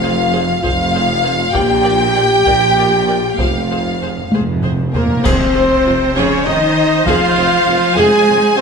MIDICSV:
0, 0, Header, 1, 13, 480
1, 0, Start_track
1, 0, Tempo, 605449
1, 1227, Time_signature, 6, 3, 24, 8
1, 1709, Tempo, 618557
1, 4109, Tempo, 605449
1, 6776, End_track
2, 0, Start_track
2, 0, Title_t, "Violin section"
2, 0, Program_c, 0, 48
2, 0, Note_on_c, 0, 77, 66
2, 491, Note_off_c, 0, 77, 0
2, 504, Note_on_c, 0, 77, 84
2, 1212, Note_off_c, 0, 77, 0
2, 1223, Note_on_c, 0, 79, 94
2, 2666, Note_off_c, 0, 79, 0
2, 2666, Note_on_c, 0, 77, 62
2, 3389, Note_off_c, 0, 77, 0
2, 3867, Note_on_c, 0, 70, 55
2, 4091, Note_off_c, 0, 70, 0
2, 4096, Note_on_c, 0, 72, 67
2, 4824, Note_off_c, 0, 72, 0
2, 4828, Note_on_c, 0, 73, 79
2, 5065, Note_on_c, 0, 75, 82
2, 5069, Note_off_c, 0, 73, 0
2, 5540, Note_on_c, 0, 77, 87
2, 5549, Note_off_c, 0, 75, 0
2, 6251, Note_off_c, 0, 77, 0
2, 6265, Note_on_c, 0, 80, 95
2, 6746, Note_off_c, 0, 80, 0
2, 6747, Note_on_c, 0, 72, 80
2, 6776, Note_off_c, 0, 72, 0
2, 6776, End_track
3, 0, Start_track
3, 0, Title_t, "Violin section"
3, 0, Program_c, 1, 48
3, 0, Note_on_c, 1, 77, 75
3, 485, Note_off_c, 1, 77, 0
3, 494, Note_on_c, 1, 77, 83
3, 1207, Note_off_c, 1, 77, 0
3, 1232, Note_on_c, 1, 79, 98
3, 2671, Note_off_c, 1, 79, 0
3, 2680, Note_on_c, 1, 77, 59
3, 3381, Note_off_c, 1, 77, 0
3, 3864, Note_on_c, 1, 70, 59
3, 4090, Note_off_c, 1, 70, 0
3, 4109, Note_on_c, 1, 72, 69
3, 4830, Note_off_c, 1, 72, 0
3, 4836, Note_on_c, 1, 73, 77
3, 5069, Note_on_c, 1, 75, 83
3, 5073, Note_off_c, 1, 73, 0
3, 5551, Note_off_c, 1, 75, 0
3, 5564, Note_on_c, 1, 77, 91
3, 6263, Note_off_c, 1, 77, 0
3, 6279, Note_on_c, 1, 80, 86
3, 6750, Note_on_c, 1, 72, 83
3, 6752, Note_off_c, 1, 80, 0
3, 6776, Note_off_c, 1, 72, 0
3, 6776, End_track
4, 0, Start_track
4, 0, Title_t, "Flute section"
4, 0, Program_c, 2, 73
4, 3870, Note_on_c, 2, 70, 59
4, 4093, Note_off_c, 2, 70, 0
4, 4112, Note_on_c, 2, 72, 72
4, 4818, Note_off_c, 2, 72, 0
4, 4837, Note_on_c, 2, 73, 79
4, 5071, Note_on_c, 2, 75, 77
4, 5073, Note_off_c, 2, 73, 0
4, 5544, Note_on_c, 2, 77, 86
4, 5552, Note_off_c, 2, 75, 0
4, 6266, Note_on_c, 2, 80, 95
4, 6268, Note_off_c, 2, 77, 0
4, 6743, Note_on_c, 2, 72, 84
4, 6746, Note_off_c, 2, 80, 0
4, 6776, Note_off_c, 2, 72, 0
4, 6776, End_track
5, 0, Start_track
5, 0, Title_t, "Viola section"
5, 0, Program_c, 3, 48
5, 24, Note_on_c, 3, 72, 54
5, 27, Note_on_c, 3, 68, 54
5, 87, Note_off_c, 3, 72, 0
5, 90, Note_off_c, 3, 68, 0
5, 267, Note_on_c, 3, 72, 53
5, 269, Note_on_c, 3, 68, 54
5, 331, Note_off_c, 3, 72, 0
5, 332, Note_off_c, 3, 68, 0
5, 501, Note_on_c, 3, 72, 57
5, 503, Note_on_c, 3, 68, 59
5, 565, Note_off_c, 3, 72, 0
5, 566, Note_off_c, 3, 68, 0
5, 744, Note_on_c, 3, 68, 55
5, 748, Note_on_c, 3, 72, 52
5, 807, Note_off_c, 3, 68, 0
5, 811, Note_off_c, 3, 72, 0
5, 976, Note_on_c, 3, 68, 55
5, 979, Note_on_c, 3, 72, 56
5, 1040, Note_off_c, 3, 68, 0
5, 1043, Note_off_c, 3, 72, 0
5, 1220, Note_on_c, 3, 70, 64
5, 1223, Note_on_c, 3, 74, 61
5, 1283, Note_off_c, 3, 70, 0
5, 1287, Note_off_c, 3, 74, 0
5, 1459, Note_on_c, 3, 70, 51
5, 1460, Note_on_c, 3, 74, 53
5, 1522, Note_off_c, 3, 70, 0
5, 1523, Note_off_c, 3, 74, 0
5, 1709, Note_on_c, 3, 74, 51
5, 1710, Note_on_c, 3, 70, 46
5, 1771, Note_off_c, 3, 74, 0
5, 1772, Note_off_c, 3, 70, 0
5, 1944, Note_on_c, 3, 70, 54
5, 1946, Note_on_c, 3, 74, 57
5, 2006, Note_off_c, 3, 70, 0
5, 2008, Note_off_c, 3, 74, 0
5, 2188, Note_on_c, 3, 74, 50
5, 2190, Note_on_c, 3, 70, 48
5, 2250, Note_off_c, 3, 74, 0
5, 2252, Note_off_c, 3, 70, 0
5, 2425, Note_on_c, 3, 70, 49
5, 2425, Note_on_c, 3, 74, 46
5, 2487, Note_off_c, 3, 70, 0
5, 2487, Note_off_c, 3, 74, 0
5, 2666, Note_on_c, 3, 68, 51
5, 2666, Note_on_c, 3, 72, 55
5, 2728, Note_off_c, 3, 68, 0
5, 2728, Note_off_c, 3, 72, 0
5, 2915, Note_on_c, 3, 68, 49
5, 2915, Note_on_c, 3, 72, 46
5, 2977, Note_off_c, 3, 68, 0
5, 2977, Note_off_c, 3, 72, 0
5, 3155, Note_on_c, 3, 72, 47
5, 3156, Note_on_c, 3, 68, 47
5, 3217, Note_off_c, 3, 72, 0
5, 3219, Note_off_c, 3, 68, 0
5, 3403, Note_on_c, 3, 72, 52
5, 3405, Note_on_c, 3, 68, 52
5, 3465, Note_off_c, 3, 72, 0
5, 3467, Note_off_c, 3, 68, 0
5, 3629, Note_on_c, 3, 68, 50
5, 3631, Note_on_c, 3, 72, 47
5, 3691, Note_off_c, 3, 68, 0
5, 3693, Note_off_c, 3, 72, 0
5, 3871, Note_on_c, 3, 72, 48
5, 3872, Note_on_c, 3, 68, 48
5, 3933, Note_off_c, 3, 72, 0
5, 3934, Note_off_c, 3, 68, 0
5, 4114, Note_on_c, 3, 68, 75
5, 4117, Note_on_c, 3, 72, 77
5, 4337, Note_off_c, 3, 68, 0
5, 4359, Note_on_c, 3, 60, 52
5, 4422, Note_off_c, 3, 60, 0
5, 4591, Note_on_c, 3, 65, 55
5, 4655, Note_off_c, 3, 65, 0
5, 4837, Note_on_c, 3, 68, 81
5, 5057, Note_off_c, 3, 68, 0
5, 5078, Note_on_c, 3, 60, 70
5, 5142, Note_off_c, 3, 60, 0
5, 5559, Note_on_c, 3, 68, 82
5, 5779, Note_off_c, 3, 68, 0
5, 5801, Note_on_c, 3, 60, 55
5, 5865, Note_off_c, 3, 60, 0
5, 6035, Note_on_c, 3, 65, 61
5, 6099, Note_off_c, 3, 65, 0
5, 6275, Note_on_c, 3, 68, 85
5, 6496, Note_off_c, 3, 68, 0
5, 6513, Note_on_c, 3, 60, 70
5, 6576, Note_off_c, 3, 60, 0
5, 6776, Note_off_c, 3, 72, 0
5, 6776, End_track
6, 0, Start_track
6, 0, Title_t, "French horn section"
6, 0, Program_c, 4, 60
6, 0, Note_on_c, 4, 65, 88
6, 494, Note_off_c, 4, 65, 0
6, 504, Note_on_c, 4, 65, 94
6, 1211, Note_off_c, 4, 65, 0
6, 1220, Note_on_c, 4, 67, 113
6, 2665, Note_off_c, 4, 67, 0
6, 2666, Note_on_c, 4, 65, 75
6, 3388, Note_off_c, 4, 65, 0
6, 3863, Note_on_c, 4, 58, 74
6, 4089, Note_off_c, 4, 58, 0
6, 4109, Note_on_c, 4, 60, 88
6, 4818, Note_on_c, 4, 61, 90
6, 4831, Note_off_c, 4, 60, 0
6, 5056, Note_on_c, 4, 63, 90
6, 5059, Note_off_c, 4, 61, 0
6, 5545, Note_off_c, 4, 63, 0
6, 5548, Note_on_c, 4, 65, 108
6, 6255, Note_off_c, 4, 65, 0
6, 6261, Note_on_c, 4, 68, 110
6, 6734, Note_off_c, 4, 68, 0
6, 6740, Note_on_c, 4, 60, 93
6, 6776, Note_off_c, 4, 60, 0
6, 6776, End_track
7, 0, Start_track
7, 0, Title_t, "Trumpet"
7, 0, Program_c, 5, 56
7, 3875, Note_on_c, 5, 58, 61
7, 4115, Note_on_c, 5, 60, 74
7, 4126, Note_off_c, 5, 58, 0
7, 4838, Note_on_c, 5, 61, 72
7, 4850, Note_off_c, 5, 60, 0
7, 5073, Note_on_c, 5, 63, 83
7, 5085, Note_off_c, 5, 61, 0
7, 5545, Note_off_c, 5, 63, 0
7, 5550, Note_on_c, 5, 65, 92
7, 6256, Note_off_c, 5, 65, 0
7, 6272, Note_on_c, 5, 68, 89
7, 6739, Note_off_c, 5, 68, 0
7, 6749, Note_on_c, 5, 60, 88
7, 6776, Note_off_c, 5, 60, 0
7, 6776, End_track
8, 0, Start_track
8, 0, Title_t, "Cello section"
8, 0, Program_c, 6, 48
8, 0, Note_on_c, 6, 41, 76
8, 424, Note_off_c, 6, 41, 0
8, 511, Note_on_c, 6, 41, 71
8, 1144, Note_off_c, 6, 41, 0
8, 1224, Note_on_c, 6, 46, 77
8, 1861, Note_off_c, 6, 46, 0
8, 1943, Note_on_c, 6, 46, 64
8, 2581, Note_off_c, 6, 46, 0
8, 2669, Note_on_c, 6, 41, 62
8, 3305, Note_off_c, 6, 41, 0
8, 3385, Note_on_c, 6, 41, 55
8, 3858, Note_off_c, 6, 41, 0
8, 3868, Note_on_c, 6, 46, 57
8, 4091, Note_off_c, 6, 46, 0
8, 4102, Note_on_c, 6, 48, 67
8, 4813, Note_off_c, 6, 48, 0
8, 4832, Note_on_c, 6, 49, 76
8, 5065, Note_on_c, 6, 51, 79
8, 5071, Note_off_c, 6, 49, 0
8, 5539, Note_off_c, 6, 51, 0
8, 5548, Note_on_c, 6, 53, 87
8, 6255, Note_off_c, 6, 53, 0
8, 6268, Note_on_c, 6, 56, 92
8, 6747, Note_off_c, 6, 56, 0
8, 6747, Note_on_c, 6, 48, 84
8, 6776, Note_off_c, 6, 48, 0
8, 6776, End_track
9, 0, Start_track
9, 0, Title_t, "Double bass section"
9, 0, Program_c, 7, 48
9, 0, Note_on_c, 7, 29, 77
9, 420, Note_off_c, 7, 29, 0
9, 497, Note_on_c, 7, 29, 73
9, 1137, Note_off_c, 7, 29, 0
9, 1220, Note_on_c, 7, 34, 65
9, 1859, Note_off_c, 7, 34, 0
9, 1947, Note_on_c, 7, 34, 65
9, 2583, Note_off_c, 7, 34, 0
9, 2665, Note_on_c, 7, 29, 58
9, 3303, Note_off_c, 7, 29, 0
9, 3385, Note_on_c, 7, 29, 61
9, 4023, Note_off_c, 7, 29, 0
9, 4106, Note_on_c, 7, 41, 72
9, 4169, Note_off_c, 7, 41, 0
9, 4345, Note_on_c, 7, 41, 57
9, 4409, Note_off_c, 7, 41, 0
9, 4583, Note_on_c, 7, 41, 61
9, 4646, Note_off_c, 7, 41, 0
9, 4824, Note_on_c, 7, 41, 80
9, 4888, Note_off_c, 7, 41, 0
9, 5064, Note_on_c, 7, 41, 55
9, 5128, Note_off_c, 7, 41, 0
9, 5541, Note_on_c, 7, 41, 86
9, 5604, Note_off_c, 7, 41, 0
9, 5783, Note_on_c, 7, 41, 64
9, 5846, Note_off_c, 7, 41, 0
9, 6021, Note_on_c, 7, 41, 62
9, 6085, Note_off_c, 7, 41, 0
9, 6262, Note_on_c, 7, 41, 89
9, 6325, Note_off_c, 7, 41, 0
9, 6506, Note_on_c, 7, 41, 58
9, 6569, Note_off_c, 7, 41, 0
9, 6776, End_track
10, 0, Start_track
10, 0, Title_t, "Timpani"
10, 0, Program_c, 8, 47
10, 2796, Note_on_c, 8, 41, 30
10, 2848, Note_off_c, 8, 41, 0
10, 2858, Note_on_c, 8, 41, 34
10, 2902, Note_off_c, 8, 41, 0
10, 2912, Note_on_c, 8, 41, 34
10, 2965, Note_off_c, 8, 41, 0
10, 2973, Note_on_c, 8, 41, 38
10, 3021, Note_off_c, 8, 41, 0
10, 3031, Note_on_c, 8, 41, 38
10, 3084, Note_off_c, 8, 41, 0
10, 3098, Note_on_c, 8, 41, 39
10, 3146, Note_off_c, 8, 41, 0
10, 3155, Note_on_c, 8, 41, 40
10, 3203, Note_off_c, 8, 41, 0
10, 3212, Note_on_c, 8, 41, 45
10, 3264, Note_off_c, 8, 41, 0
10, 3279, Note_on_c, 8, 41, 45
10, 3321, Note_off_c, 8, 41, 0
10, 3330, Note_on_c, 8, 41, 51
10, 3382, Note_off_c, 8, 41, 0
10, 3396, Note_on_c, 8, 41, 53
10, 3445, Note_off_c, 8, 41, 0
10, 3455, Note_on_c, 8, 41, 56
10, 3504, Note_off_c, 8, 41, 0
10, 3517, Note_on_c, 8, 41, 57
10, 3561, Note_off_c, 8, 41, 0
10, 3571, Note_on_c, 8, 41, 57
10, 3619, Note_off_c, 8, 41, 0
10, 3629, Note_on_c, 8, 41, 64
10, 3680, Note_off_c, 8, 41, 0
10, 3695, Note_on_c, 8, 41, 67
10, 3733, Note_off_c, 8, 41, 0
10, 3742, Note_on_c, 8, 41, 71
10, 3791, Note_off_c, 8, 41, 0
10, 3800, Note_on_c, 8, 41, 67
10, 3852, Note_off_c, 8, 41, 0
10, 3862, Note_on_c, 8, 41, 71
10, 3915, Note_off_c, 8, 41, 0
10, 3927, Note_on_c, 8, 41, 78
10, 3970, Note_off_c, 8, 41, 0
10, 3979, Note_on_c, 8, 41, 76
10, 4033, Note_off_c, 8, 41, 0
10, 4044, Note_on_c, 8, 41, 86
10, 4095, Note_off_c, 8, 41, 0
10, 4110, Note_on_c, 8, 41, 88
10, 4799, Note_off_c, 8, 41, 0
10, 6776, End_track
11, 0, Start_track
11, 0, Title_t, "Tuba"
11, 0, Program_c, 10, 58
11, 0, Note_on_c, 10, 29, 76
11, 421, Note_off_c, 10, 29, 0
11, 510, Note_on_c, 10, 29, 68
11, 1144, Note_off_c, 10, 29, 0
11, 1225, Note_on_c, 10, 34, 70
11, 1861, Note_off_c, 10, 34, 0
11, 1948, Note_on_c, 10, 34, 58
11, 2584, Note_off_c, 10, 34, 0
11, 2664, Note_on_c, 10, 29, 65
11, 3303, Note_off_c, 10, 29, 0
11, 3392, Note_on_c, 10, 29, 54
11, 4026, Note_off_c, 10, 29, 0
11, 4107, Note_on_c, 10, 29, 76
11, 4204, Note_off_c, 10, 29, 0
11, 4354, Note_on_c, 10, 29, 63
11, 4450, Note_off_c, 10, 29, 0
11, 4595, Note_on_c, 10, 29, 60
11, 4690, Note_off_c, 10, 29, 0
11, 4830, Note_on_c, 10, 29, 74
11, 4926, Note_off_c, 10, 29, 0
11, 5072, Note_on_c, 10, 29, 55
11, 5168, Note_off_c, 10, 29, 0
11, 5556, Note_on_c, 10, 29, 80
11, 5651, Note_off_c, 10, 29, 0
11, 5789, Note_on_c, 10, 29, 66
11, 5886, Note_off_c, 10, 29, 0
11, 6031, Note_on_c, 10, 29, 61
11, 6127, Note_off_c, 10, 29, 0
11, 6275, Note_on_c, 10, 29, 91
11, 6370, Note_off_c, 10, 29, 0
11, 6514, Note_on_c, 10, 29, 66
11, 6608, Note_off_c, 10, 29, 0
11, 6776, End_track
12, 0, Start_track
12, 0, Title_t, "Taiko and cinematic ensemble drums"
12, 506, Note_on_c, 9, 41, 72
12, 585, Note_off_c, 9, 41, 0
12, 1227, Note_on_c, 9, 41, 91
12, 1307, Note_off_c, 9, 41, 0
12, 1945, Note_on_c, 9, 41, 76
12, 2023, Note_off_c, 9, 41, 0
12, 2666, Note_on_c, 9, 41, 87
12, 2744, Note_off_c, 9, 41, 0
12, 3386, Note_on_c, 9, 48, 73
12, 3464, Note_off_c, 9, 48, 0
12, 3629, Note_on_c, 9, 45, 75
12, 3706, Note_off_c, 9, 45, 0
12, 3872, Note_on_c, 9, 43, 82
12, 3950, Note_off_c, 9, 43, 0
12, 4108, Note_on_c, 9, 41, 95
12, 4188, Note_off_c, 9, 41, 0
12, 5553, Note_on_c, 9, 41, 98
12, 5632, Note_off_c, 9, 41, 0
12, 6776, End_track
13, 0, Start_track
13, 0, Title_t, "Drums"
13, 4114, Note_on_c, 9, 35, 66
13, 4114, Note_on_c, 9, 49, 62
13, 4193, Note_off_c, 9, 35, 0
13, 4193, Note_off_c, 9, 49, 0
13, 6776, End_track
0, 0, End_of_file